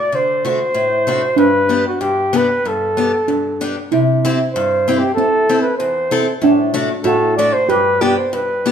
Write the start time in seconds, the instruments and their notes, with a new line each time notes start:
Already playing: steel pan F#4, flugelhorn D5
0.12 steel-string acoustic guitar D3, flugelhorn C5
0.45 steel-string acoustic guitar A3 D4 F#4, flugelhorn C5
0.74 steel-string acoustic guitar A2
1.07 steel-string acoustic guitar A3 D4 F#4
1.36 steel-string acoustic guitar G2, steel pan D4, flugelhorn B4
1.69 steel-string acoustic guitar B3 D4 G4
1.87 flugelhorn F#4
2.01 steel-string acoustic guitar G2, flugelhorn G4
2.33 steel-string acoustic guitar B3 D4 G4, flugelhorn B4
2.65 steel-string acoustic guitar G2, flugelhorn A4
2.97 steel-string acoustic guitar B3 D4 G4
3.28 steel-string acoustic guitar G2, steel pan D4
3.61 steel-string acoustic guitar B3 D4 G4
3.92 steel-string acoustic guitar C3, steel pan E4
4.25 steel-string acoustic guitar C4 E4 G4
4.53 steel-string acoustic guitar G2, flugelhorn C5
4.88 steel-string acoustic guitar C4 E4 G4
4.99 flugelhorn G4
5.14 steel-string acoustic guitar A2, steel pan C4, flugelhorn A4
5.49 steel-string acoustic guitar C4 E4 A4
5.62 flugelhorn B4
5.78 steel-string acoustic guitar E2, flugelhorn C5
6.11 steel-string acoustic guitar C4 E4 A4
6.42 steel-string acoustic guitar A2, steel pan D4
6.74 steel-string acoustic guitar A3 D4 F#4
7.04 steel-string acoustic guitar A2, steel pan F#4, flugelhorn A4
7.37 steel-string acoustic guitar A3 D4 F#4, flugelhorn D5
7.53 flugelhorn C5
7.69 steel-string acoustic guitar G2, steel pan G4, flugelhorn B4
8.01 steel-string acoustic guitar B3 D4 G4, flugelhorn G4
8.17 flugelhorn C5
8.33 steel-string acoustic guitar G2, flugelhorn B4
8.66 steel-string acoustic guitar B3 D4 G4